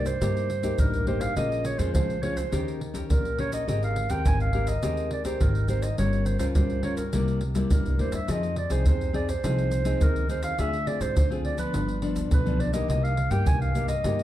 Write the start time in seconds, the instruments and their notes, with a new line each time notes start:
Already playing: upright bass C2, nylon-string guitar G2
0.06 clarinet C5, pandeiro, shaker, surdo
0.21 upright bass G2, nylon-string guitar C3 A#3 D#4 G4, pandeiro, shaker, surdo
0.37 pandeiro, shaker
0.50 pandeiro, shaker
0.63 nylon-string guitar A#3 D#4 G4, pandeiro, shaker, surdo
0.78 upright bass A1, nylon-string guitar G2, clarinet A#4, pandeiro, shaker, surdo
0.94 pandeiro, shaker, surdo
1.07 nylon-string guitar A#3 D#4 G4, clarinet C5, pandeiro
1.21 clarinet F5, pandeiro, shaker
1.37 upright bass A#1, nylon-string guitar A#2 G#3 C#4 F4, clarinet D#5, pandeiro, shaker, surdo
1.52 pandeiro, shaker
1.65 clarinet C#5, pandeiro, shaker
1.78 upright bass F2, nylon-string guitar G#3 C#4 F4, clarinet C5, pandeiro, shaker, surdo
1.94 upright bass C#2, nylon-string guitar F3, clarinet C5, pandeiro, shaker, surdo
2.10 pandeiro, shaker
2.22 nylon-string guitar G#3 C#4 F4, clarinet C#5, pandeiro, surdo
2.37 clarinet C5, pandeiro, shaker, surdo
2.52 upright bass D#2, nylon-string guitar D#3 C#4 G4 A#4, pandeiro, shaker, surdo
2.68 pandeiro, shaker
2.81 pandeiro
2.94 nylon-string guitar C#4 G4 A#4, pandeiro, shaker, surdo
3.10 upright bass A#1, nylon-string guitar A#2, clarinet A#4, pandeiro, shaker, surdo
3.25 pandeiro, shaker, surdo
3.38 nylon-string guitar C#4 G4 A#4, clarinet C#5, pandeiro
3.52 clarinet D#5, pandeiro, shaker
3.67 upright bass G#1, nylon-string guitar G#3 C4 G4 A#4, clarinet D#5, pandeiro, shaker, surdo
3.83 clarinet F5, pandeiro, shaker
3.96 pandeiro
4.10 upright bass D#2, nylon-string guitar C4 G4 A#4, clarinet G5, pandeiro, shaker, surdo
4.25 upright bass G#1, nylon-string guitar D#3, clarinet G#5, pandeiro, shaker, surdo
4.40 clarinet F5, pandeiro, shaker
4.53 nylon-string guitar C4 G4 A#4, pandeiro, surdo
4.67 clarinet D#5, pandeiro, shaker, surdo
4.83 upright bass D#2, nylon-string guitar G#3 C4 G4 A#4, pandeiro, shaker, surdo
4.97 pandeiro, shaker
5.11 clarinet D5, pandeiro
5.25 nylon-string guitar C4 G4 A#4, clarinet C5, pandeiro, shaker, surdo
5.41 upright bass G#1, nylon-string guitar D#3, clarinet A#4, pandeiro, shaker, surdo
5.55 pandeiro, shaker, surdo
5.68 nylon-string guitar C4 G4 A#4, clarinet C5, pandeiro, shaker
5.82 clarinet D#5, pandeiro, shaker
5.98 upright bass G1, nylon-string guitar G3 C#4 F4 A#4, clarinet C#5, pandeiro, shaker, surdo
6.13 pandeiro, shaker
6.26 clarinet C5, pandeiro, shaker
6.39 upright bass C#2, nylon-string guitar C#4 F4 A#4, clarinet C5, pandeiro, shaker, surdo
6.55 upright bass G1, nylon-string guitar G3, clarinet C5, pandeiro, shaker, surdo
6.70 pandeiro, shaker
6.83 nylon-string guitar C#4 F4 A#4, clarinet C#5, pandeiro, surdo
6.97 clarinet A#4, pandeiro, shaker, surdo
7.12 upright bass C2, nylon-string guitar C3 G3 A#3 E4, pandeiro, shaker, surdo
7.28 pandeiro, shaker
7.41 pandeiro
7.55 nylon-string guitar G3 A#3 E4, pandeiro, shaker, surdo
7.70 upright bass A#1, nylon-string guitar G2, clarinet A#4, pandeiro, shaker, surdo
7.86 upright bass C2, pandeiro, shaker, surdo
7.98 upright bass D2, nylon-string guitar G3 A#3 E4, clarinet C5, pandeiro
8.12 upright bass E2, clarinet E5, pandeiro, shaker
8.28 upright bass F2, nylon-string guitar F3 C4 D#4 G#4, clarinet D#5, pandeiro, shaker, surdo
8.43 pandeiro, shaker
8.56 clarinet D5, pandeiro
8.70 upright bass C2, nylon-string guitar C4 D#4 G#4, clarinet C5, pandeiro, shaker, surdo
8.86 nylon-string guitar C3, clarinet C5, pandeiro, shaker, surdo
9.01 pandeiro, shaker
9.13 nylon-string guitar C4 D#4 G#4, clarinet D5, pandeiro, surdo
9.29 clarinet C5, pandeiro, shaker, surdo
9.44 upright bass C2, nylon-string guitar F3 C4 D#4 G#4, pandeiro, shaker, surdo
9.59 pandeiro, shaker
9.71 pandeiro, shaker
9.85 nylon-string guitar C4 D#4 G#4, pandeiro, shaker, surdo
10.01 upright bass D#2, nylon-string guitar C3, clarinet A#4, pandeiro, shaker, surdo
10.16 pandeiro, shaker, surdo
10.29 nylon-string guitar C4 D#4 G#4, clarinet C5, pandeiro, shaker
10.43 clarinet F5, pandeiro, shaker
10.58 upright bass D2, nylon-string guitar D3 C4 F4 G#4, clarinet E5, pandeiro, shaker, surdo
10.73 pandeiro, shaker
10.86 nylon-string guitar C4 F4 G#4, clarinet D5, pandeiro
11.00 upright bass G#2, clarinet C5, pandeiro, shaker, surdo
11.16 upright bass D2, nylon-string guitar D3, clarinet C5, pandeiro, shaker, surdo
11.30 nylon-string guitar C4 F4 G#4, pandeiro, shaker
11.45 clarinet D5, pandeiro
11.57 nylon-string guitar F3 B3 D4, clarinet B4, pandeiro, shaker, surdo
11.73 upright bass G1, nylon-string guitar G2, pandeiro, shaker, surdo
11.89 pandeiro, shaker
12.02 nylon-string guitar F3 B3 D4, pandeiro
12.16 pandeiro, shaker, surdo
12.31 upright bass B1, nylon-string guitar D3, clarinet B4, pandeiro, shaker, surdo
12.46 nylon-string guitar F3 B3 D4, pandeiro, shaker, surdo
12.60 clarinet D5, pandeiro
12.73 nylon-string guitar A#3 D#4 G4, clarinet D#5, pandeiro, shaker
12.88 upright bass C2, nylon-string guitar C3, clarinet D#5, pandeiro, shaker, surdo
13.04 clarinet F5, pandeiro, shaker
13.17 pandeiro
13.30 upright bass G2, nylon-string guitar A#3 D#4 G4, clarinet G5, pandeiro, shaker, surdo
13.46 upright bass C2, nylon-string guitar G2, clarinet G#5, pandeiro, shaker, surdo
13.61 clarinet F5, pandeiro, shaker
13.75 nylon-string guitar A#3 D#4 G4, pandeiro, shaker, surdo
13.88 clarinet D#5, pandeiro, shaker, surdo
14.04 upright bass G2, nylon-string guitar C3 A#3 D#4 G4, pandeiro, shaker, surdo
14.19 pandeiro, shaker